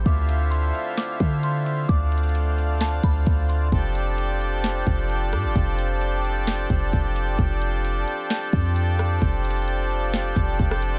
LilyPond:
<<
  \new Staff \with { instrumentName = "Synth bell" } { \time 4/4 \key f \major \tempo 4 = 131 d'''4 c'''4 d'''4 c'''8 c'''8 | d'''2 a''8 b''4 c'''8 | r1 | r1 |
r1 | r1 | }
  \new Staff \with { instrumentName = "Accordion" } { \time 4/4 \key f \major << { <d a f'>1~ | <d a f'>1 | <f c' d' a'>1~ | <f c' d' a'>1~ |
<f c' d' a'>1~ | <f c' d' a'>1 | } \\ { <c' e'>1 | d'1 | g'1~ | g'1~ |
g'1~ | g'1 | } >> }
  \new Staff \with { instrumentName = "808-style bass" } { \clef bass \time 4/4 \key f \major d,4. r4 d4. | d,2~ d,8 d,8 d,4 | f,,2~ f,,8 f,,4 a,16 f,,16 | f,,2~ f,,8 f,,8 f,,4 |
f,,4. r4 f,4. | f,,2~ f,,8 f,,8 f,,4 | }
  \new DrumStaff \with { instrumentName = "Drums" } \drummode { \time 4/4 <hh bd>8 hh8 hh8 hh8 <hh sn>8 <hh bd>8 hh8 hh8 | <hh bd>8 hh32 hh32 hh32 hh32 hh8 hh8 <hh sn>8 <hh bd>8 <hh bd>8 hh8 | <hh bd>8 hh8 hh8 hh8 <hh sn>8 <hh bd>8 hh8 <hh ss>8 | <hh bd>8 hh8 hh8 hh8 <hh sn>8 <hh bd>8 <hh bd>8 hh8 |
<hh bd>8 hh8 hh8 hh8 <hh sn>8 <hh bd>8 hh8 <hh ss>8 | <hh bd>8 hh32 hh32 hh32 hh32 hh8 hh8 <hh sn>8 <hh bd>8 <hh bd>16 ss16 hh8 | }
>>